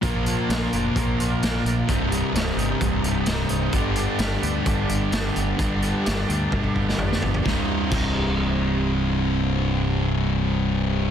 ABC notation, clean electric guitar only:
X:1
M:4/4
L:1/8
Q:1/4=129
K:Cm
V:1 name="Clean electric guitar"
[B,,F,B,DFB] [B,DFB] [B,DFB] [B,DFB] [B,,F,B,DFB] [B,DFB] [B,DFB]2 | [C,,G,,C,G,E] [C,G,E] [G,,C,G,E] [C,G,E] [C,,G,,C,G,E] [C,G,E] [G,,C,G,E]2 | [G,,D,G,=B,DG] [G,B,DG] [G,B,DG] [G,B,DG] [G,,D,G,B,DG] [G,B,DG] [G,B,DG]2 | [G,,D,G,=B,DG] [G,B,DG] [G,B,DG] [G,B,DG] [G,,D,G,B,DG] [G,B,DG] [G,B,DG]2 |
[C,,G,,C,G,E] z [C,,G,,C,G,E]6- | [C,,G,,C,G,E]8 |]